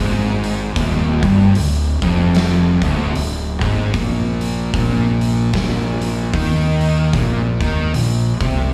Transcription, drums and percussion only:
0.44 open hi-hat
0.76 kick, open hi-hat
1.23 kick, open hi-hat
1.55 open hi-hat
2.02 kick, open hi-hat
2.35 snare, open hi-hat
2.82 kick, open hi-hat
3.15 open hi-hat
3.61 kick, open hi-hat
3.94 kick, open hi-hat
4.41 open hi-hat
4.74 kick, open hi-hat
5.21 open hi-hat
5.53 kick, snare, open hi-hat
6.01 open hi-hat
6.34 kick, open hi-hat
6.81 open hi-hat
7.13 kick, open hi-hat
7.61 kick, open hi-hat
7.94 open hi-hat
8.41 kick, open hi-hat

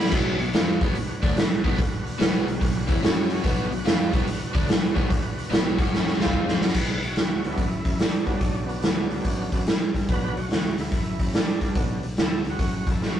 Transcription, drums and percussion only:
0.06 snare
0.12 kick, crash
0.39 open hi-hat
0.53 snare, open hi-hat
0.81 kick, open hi-hat
0.95 open hi-hat
1.23 kick, open hi-hat
1.37 snare, open hi-hat
1.64 kick, open hi-hat
1.79 kick, open hi-hat
2.06 open hi-hat
2.20 snare, open hi-hat
2.48 open hi-hat
2.61 kick, open hi-hat
2.89 kick, open hi-hat
3.03 snare, open hi-hat
3.30 open hi-hat
3.44 kick, open hi-hat
3.72 open hi-hat
3.86 snare, open hi-hat
4.13 kick, open hi-hat
4.28 open hi-hat
4.55 kick, open hi-hat
4.69 snare, open hi-hat
4.96 kick, open hi-hat
5.10 kick, open hi-hat
5.39 open hi-hat
5.52 snare, open hi-hat
5.79 kick, open hi-hat
5.94 snare
6.07 snare
6.20 snare
6.26 kick
6.33 kick
6.48 snare
6.61 snare
6.68 snare
6.74 kick, crash
7.03 open hi-hat
7.16 snare, open hi-hat
7.44 open hi-hat
7.58 kick, open hi-hat
7.85 kick, open hi-hat
7.99 snare, open hi-hat
8.27 kick, open hi-hat
8.41 kick, open hi-hat
8.69 open hi-hat
8.82 snare, open hi-hat
9.10 open hi-hat
9.25 kick, open hi-hat
9.52 kick, open hi-hat
9.67 snare, open hi-hat
9.94 kick, open hi-hat
10.09 kick, open hi-hat
10.37 open hi-hat
10.51 snare, open hi-hat
10.78 open hi-hat
10.92 kick, open hi-hat
11.19 kick, open hi-hat
11.34 snare, open hi-hat
11.61 kick, open hi-hat
11.75 kick, open hi-hat
12.03 open hi-hat
12.17 snare, open hi-hat
12.45 open hi-hat
12.59 kick, open hi-hat
12.87 kick, open hi-hat
13.03 snare

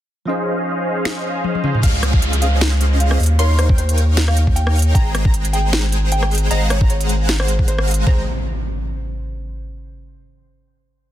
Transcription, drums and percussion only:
1.05 finger snap, snare
1.44 high tom
1.55 high tom
1.64 mid tom
1.75 mid tom
1.83 kick, closed hi-hat, crash
2.03 cross-stick, closed hi-hat
2.14 kick
2.22 closed hi-hat
2.33 closed hi-hat
2.42 closed hi-hat
2.61 snare, closed hi-hat
2.81 closed hi-hat
3.00 closed hi-hat
3.11 cross-stick
3.20 closed hi-hat, open hi-hat
3.26 closed hi-hat
3.39 closed hi-hat
3.59 cross-stick, closed hi-hat
3.69 kick
3.78 closed hi-hat
3.89 closed hi-hat
3.98 closed hi-hat
4.17 snare, closed hi-hat
4.28 cross-stick
4.37 closed hi-hat
4.47 kick
4.56 closed hi-hat
4.67 cross-stick
4.76 closed hi-hat, open hi-hat
4.82 closed hi-hat
4.95 kick, closed hi-hat
5.15 cross-stick, closed hi-hat
5.25 kick
5.34 closed hi-hat
5.45 closed hi-hat
5.53 closed hi-hat
5.73 snare, closed hi-hat
5.92 closed hi-hat
6.12 closed hi-hat
6.23 cross-stick
6.31 closed hi-hat, open hi-hat
6.38 closed hi-hat
6.51 closed hi-hat
6.70 cross-stick, closed hi-hat
6.81 kick
6.90 closed hi-hat
7.01 closed hi-hat
7.09 closed hi-hat
7.29 snare, closed hi-hat
7.40 cross-stick
7.48 closed hi-hat
7.59 kick
7.68 closed hi-hat
7.79 cross-stick
7.87 closed hi-hat, open hi-hat
7.94 closed hi-hat
8.07 kick

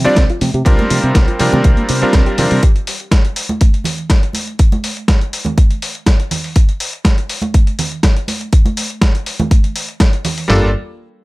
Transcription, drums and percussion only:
0.16 kick, snare, closed hi-hat
0.30 closed hi-hat
0.41 open hi-hat, high conga
0.54 closed hi-hat
0.66 kick, closed hi-hat
0.79 closed hi-hat, high conga
0.90 open hi-hat
1.03 closed hi-hat
1.15 kick, snare, closed hi-hat
1.28 closed hi-hat
1.40 open hi-hat
1.52 closed hi-hat, high conga, low conga
1.64 kick, closed hi-hat
1.77 closed hi-hat
1.89 open hi-hat
2.02 closed hi-hat
2.13 kick, snare, closed hi-hat
2.26 closed hi-hat
2.38 open hi-hat, low conga
2.51 open hi-hat
2.63 kick, closed hi-hat
2.76 closed hi-hat
2.87 open hi-hat
3.00 closed hi-hat
3.12 kick, snare, closed hi-hat
3.25 closed hi-hat
3.36 open hi-hat
3.49 closed hi-hat, high conga
3.61 kick, closed hi-hat
3.74 closed hi-hat
3.84 open hi-hat, low conga
3.98 closed hi-hat
4.10 kick, snare, closed hi-hat
4.23 closed hi-hat
4.33 open hi-hat, high conga
4.47 closed hi-hat
4.59 kick, closed hi-hat
4.72 closed hi-hat, high conga
4.84 open hi-hat
4.97 closed hi-hat
5.08 kick, snare, closed hi-hat
5.21 closed hi-hat
5.33 open hi-hat
5.45 closed hi-hat, high conga, low conga
5.58 kick, closed hi-hat
5.71 closed hi-hat
5.82 open hi-hat
5.95 closed hi-hat
6.06 kick, snare, closed hi-hat
6.20 closed hi-hat
6.31 open hi-hat, low conga
6.44 open hi-hat
6.56 kick, closed hi-hat
6.69 closed hi-hat
6.80 open hi-hat
6.93 closed hi-hat
7.05 kick, snare, closed hi-hat
7.18 closed hi-hat
7.29 open hi-hat
7.42 closed hi-hat, high conga
7.54 kick, closed hi-hat
7.67 closed hi-hat
7.79 open hi-hat, low conga
7.92 closed hi-hat
8.03 kick, snare, closed hi-hat
8.17 closed hi-hat
8.28 open hi-hat, high conga
8.41 closed hi-hat
8.53 kick, closed hi-hat
8.65 closed hi-hat, high conga
8.77 open hi-hat
8.90 closed hi-hat
9.02 kick, snare, closed hi-hat
9.15 closed hi-hat
9.26 open hi-hat
9.39 closed hi-hat, high conga, low conga
9.51 kick, closed hi-hat
9.64 closed hi-hat
9.76 open hi-hat
9.89 closed hi-hat
10.00 kick, snare, closed hi-hat
10.13 closed hi-hat
10.25 open hi-hat, low conga
10.38 open hi-hat
10.50 snare, floor tom

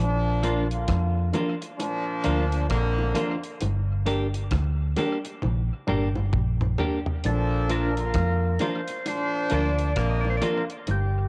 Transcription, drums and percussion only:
0.43 closed hi-hat
0.71 closed hi-hat
0.88 kick, cross-stick, closed hi-hat, high bongo
1.33 closed hi-hat, high bongo, low bongo
1.62 closed hi-hat
1.80 closed hi-hat, high bongo
2.24 closed hi-hat
2.52 closed hi-hat
2.70 kick, cross-stick, closed hi-hat
2.99 high bongo
3.15 closed hi-hat, low bongo
3.44 closed hi-hat
3.61 closed hi-hat, high bongo
4.06 closed hi-hat
4.34 closed hi-hat
4.51 kick, cross-stick, closed hi-hat, high bongo
4.96 closed hi-hat, high bongo, low bongo
5.25 closed hi-hat
5.42 high tom, high bongo
5.87 mid tom
6.15 high bongo
6.33 kick, mid tom
6.61 mid tom, high bongo
6.78 floor tom, low bongo
7.06 floor tom
7.24 closed hi-hat, high bongo
7.70 closed hi-hat
7.97 closed hi-hat
8.14 kick, cross-stick, closed hi-hat, high bongo
8.59 closed hi-hat, high bongo, low bongo
8.88 closed hi-hat
9.06 closed hi-hat, high bongo
9.50 closed hi-hat
9.78 closed hi-hat
9.96 kick, cross-stick, closed hi-hat
10.25 high bongo
10.42 closed hi-hat, low bongo
10.70 closed hi-hat
10.87 closed hi-hat, high bongo

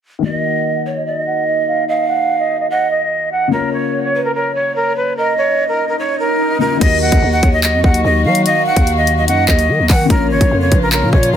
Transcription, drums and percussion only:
6.81 kick, closed hi-hat, crash
7.12 kick, closed hi-hat
7.43 kick, closed hi-hat
7.64 clap, closed hi-hat
7.84 kick
7.94 closed hi-hat
8.35 closed hi-hat
8.46 closed hi-hat
8.76 kick, closed hi-hat
8.87 closed hi-hat
9.07 closed hi-hat
9.28 closed hi-hat
9.48 kick, clap
9.59 closed hi-hat
9.90 kick, clap, open hi-hat
10.10 kick, closed hi-hat
10.41 kick, closed hi-hat
10.72 kick, closed hi-hat
10.92 clap, closed hi-hat
11.13 kick
11.23 closed hi-hat

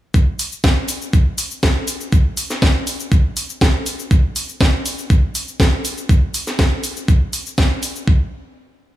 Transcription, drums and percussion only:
0.14 kick, cabasa
0.39 open hi-hat, cabasa
0.52 cabasa
0.64 kick, snare, cabasa
0.88 open hi-hat, cabasa
1.02 cabasa
1.13 kick, cabasa
1.38 open hi-hat, cabasa
1.51 cabasa
1.63 kick, snare, cabasa
1.88 open hi-hat, cabasa
2.01 cabasa
2.12 kick, cabasa
2.37 open hi-hat, cabasa
2.50 snare, cabasa
2.62 kick, snare, cabasa
2.87 open hi-hat, cabasa
3.00 cabasa
3.12 kick, cabasa
3.37 open hi-hat, cabasa
3.50 cabasa
3.61 kick, snare, cabasa
3.86 open hi-hat, cabasa
3.99 cabasa
4.11 kick, cabasa
4.36 open hi-hat, cabasa
4.49 cabasa
4.61 kick, snare, cabasa
4.86 open hi-hat, cabasa
4.98 cabasa
5.10 kick, cabasa
5.35 open hi-hat, cabasa
5.48 cabasa
5.60 kick, snare, cabasa
5.85 open hi-hat, cabasa
5.98 cabasa
6.09 kick, cabasa
6.34 open hi-hat, cabasa
6.47 snare, cabasa
6.59 kick, snare, cabasa
6.84 open hi-hat, cabasa
6.97 cabasa
7.08 kick, cabasa
7.33 open hi-hat, cabasa
7.46 cabasa
7.58 kick, snare, cabasa
7.83 open hi-hat, cabasa
7.96 cabasa
8.08 kick

